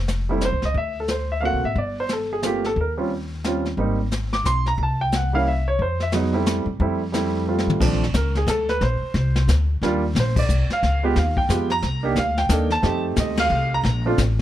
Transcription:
Already playing: upright bass F1
0.08 snare, hi-hat pedal
0.29 grand piano G3 A3 C4 E4
0.41 grand piano C5, snare, hi-hat pedal
0.53 upright bass C2
0.62 upright bass C#2, grand piano D#5, snare
0.74 upright bass D2, grand piano E5, brush sweep, kick
1.00 grand piano A4
1.08 grand piano C5, snare, hi-hat pedal
1.32 grand piano E5
1.41 grand piano A3 A#3 C4 F#4 F5
1.45 grand piano F#5
1.53 upright bass C2
1.64 upright bass A1, grand piano E5
1.76 upright bass G1, grand piano D5, brush sweep, kick
2.00 grand piano C5
2.09 snare, hi-hat pedal
2.13 grand piano A4
2.33 grand piano G#4
2.42 grand piano A3 A#3 C4 F4 G4, snare, hi-hat pedal
2.64 grand piano A4, snare
2.76 upright bass D#2, brush sweep, kick
2.81 grand piano A#4
2.97 grand piano G3 C4 C#4 F4
3.44 grand piano G3 C4 C#4 F4, snare, hi-hat pedal
3.65 snare
3.77 upright bass G#1, grand piano G3 A#3 C4 D#4, brush sweep, kick
4.12 snare, hi-hat pedal
4.33 grand piano D6, snare
4.44 upright bass B1, grand piano C6, snare, hi-hat pedal
4.66 grand piano A#5, snare
4.78 upright bass C2, brush sweep, kick
4.83 grand piano A5
5.01 grand piano G5
5.12 grand piano F#5, snare, hi-hat pedal
5.33 grand piano G3 A#3 C#4 E4 F5
5.48 grand piano E5
5.68 grand piano C#5
5.79 upright bass F2, grand piano C5, brush sweep, kick
6.00 grand piano E5, snare
6.12 grand piano F#3 G#3 B3 D#4, snare, hi-hat pedal
6.33 grand piano G3 A3 C4 E4
6.46 snare, hi-hat pedal
6.66 upright bass F#2
6.80 upright bass F2, grand piano G3 A3 C4 E4, brush sweep, kick
7.12 grand piano G3 A3 C4 E4, snare, hi-hat pedal
7.48 grand piano G3 A3 C4 F4
7.59 snare
7.67 upright bass A1, mid tom
7.80 upright bass A#1, grand piano F3 A3 C4 D4, brush sweep, kick, snare, crash
7.93 snare
8.04 snare
8.14 upright bass C#2, grand piano A#4, kick, snare, hi-hat pedal
8.35 grand piano G#4, snare
8.47 upright bass D2, grand piano A4, kick, snare, hi-hat pedal
8.69 grand piano B4, snare
8.81 upright bass A#1, grand piano C5, brush sweep, kick, snare
9.02 muted upright bass stroke
9.14 upright bass C2, kick, snare
9.36 snare
9.48 upright bass D2, kick, snare, hi-hat pedal
9.82 upright bass D#2, grand piano G3 A#3 D4 F4, brush sweep, kick, snare
10.15 upright bass A#1, kick, snare, hi-hat pedal
10.20 grand piano C5
10.36 grand piano D5, kick, crash
10.49 upright bass C2, hi-hat pedal
10.69 muted upright bass stroke, snare
10.73 grand piano F5
10.83 upright bass C#2, brush sweep, kick, snare
11.03 grand piano G#3 B3 F4 G4
11.16 upright bass D#2, grand piano F5, kick, snare
11.37 grand piano G5, kick
11.49 upright bass F2, grand piano G#3 B3 F4 G4, kick, snare, hi-hat pedal
11.70 grand piano A#5, snare
11.82 upright bass C2, brush sweep, kick, snare
12.03 grand piano A#3 D4 D#4 G4
12.16 upright bass D2, grand piano F5, kick, snare, hi-hat pedal
12.37 grand piano G5, snare
12.49 upright bass D#2, grand piano A#3 D4 D#4 A4, kick, snare, hi-hat pedal
12.70 grand piano A5, snare
12.82 upright bass F2, grand piano A3 C4 D#4 G4, brush sweep, kick, snare
13.16 upright bass D2, grand piano D#5, kick, snare, hi-hat pedal
13.37 grand piano F5, snare, ride
13.50 upright bass C2
13.74 grand piano A#5
13.84 upright bass A#1, brush sweep, kick, snare
14.06 grand piano A3 C4 D4 F4
14.18 upright bass A1, kick, snare, hi-hat pedal

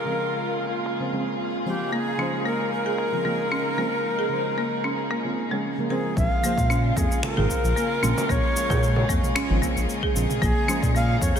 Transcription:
Already playing: string section C#3 G#3 A#3 F4 G#4, synth texture F4 F5, native american-style wooden flute A#4
0.05 synth stab C#3 F3 G#3 C4
0.86 finger snap
0.99 synth stab C#3 F3 G#3 C4
1.12 synth stab C#3 F3 G#3 C4
1.65 synth stab C#3 F3 G#3 C4, native american-style wooden flute G4
1.92 marimba A#3, string section D#4, native american-style wooden flute G#4
2.17 synth stab C#3 F3 G#3 C5, marimba C#4
2.46 marimba A#3, native american-style wooden flute A#4
2.73 native american-style wooden flute A#4
2.86 marimba G#4
2.98 finger snap
3.12 synth stab C#3 F3 G#3 C4
3.24 synth stab C#3 F3 G#3 C4, marimba A#3
3.52 marimba C#4
3.77 synth stab C#3 F3 G#3 C4, marimba A#3
4.19 marimba G#4
4.29 synth stab C#3 F3 G#3, shaker
4.33 synth stab C5
4.46 shaker
4.58 marimba A#3
4.84 marimba C#4, shaker
4.99 shaker
5.11 marimba A#3, finger snap, shaker
5.24 synth stab C#3 F3 G#3 C4
5.38 shaker
5.50 synth stab C#3 F3 G#3 C#4, marimba G#3, shaker
5.65 shaker
5.78 synth stab C#3 F3 G#3 A#3
5.89 synth stab C#3 F3 G#3 C4, native american-style wooden flute G#4, marimba A#4, shaker
6.05 shaker
6.17 analog synth bass A#1, string section C#3 G#3 A#3 F4 G#4, native american-style wooden flute F5, kick, shaker
6.42 synth stab C#3 F3 G#3 C5, marimba A#3, shaker
6.58 analog synth bass A#2, kick, shaker
6.70 marimba C#4, shaker
6.97 analog synth bass F2, marimba A#3, native american-style wooden flute G#4, kick, shaker
7.11 shaker
7.23 native american-style wooden flute A4, finger snap, frame drum, shaker
7.35 analog synth bass G#1, synth stab C#3 F3 G#3 C4, marimba G#4, native american-style wooden flute A#4, mid tom
7.48 synth stab C#3 F3 G#3 C4, kick, shaker
7.64 analog synth bass A#1, shaker
7.76 marimba A#3, shaker
8.02 analog synth bass A#1, synth stab C#3 F3 G#3 C4, marimba C#4, shaker
8.17 frame drum, shaker
8.29 analog synth bass A#1, marimba A#3, native american-style wooden flute C#5, kick, shaker
8.54 synth stab C#3 F3 G#3, shaker
8.58 synth stab C#5
8.70 analog synth bass A#2, marimba G#4, kick, frame drum, shaker
8.83 shaker
8.96 frame drum
9.09 analog synth bass F2, marimba A#3, kick, shaker
9.23 mid tom, shaker
9.36 marimba C#4, finger snap, shaker
9.49 analog synth bass G#1, synth stab C#3 F3 G#3 C4
9.61 synth stab C#3 F3 G#3 C4, marimba A#3, kick, shaker
9.76 analog synth bass A#1, shaker
9.90 shaker
10.03 marimba G#4, kick
10.14 analog synth bass A#1, synth stab C#3 F3 G#3 C4, shaker
10.30 mid tom, shaker
10.42 analog synth bass A#1, marimba A#3, string section D#4, native american-style wooden flute G#4, kick, shaker
10.66 synth stab C#3 F3 G#3 C5, marimba C#4, shaker
10.82 analog synth bass A#2, kick, shaker
10.95 marimba A#3, native american-style wooden flute F5, shaker
11.21 analog synth bass F2, native american-style wooden flute C#5, kick, shaker
11.36 marimba G#4, shaker

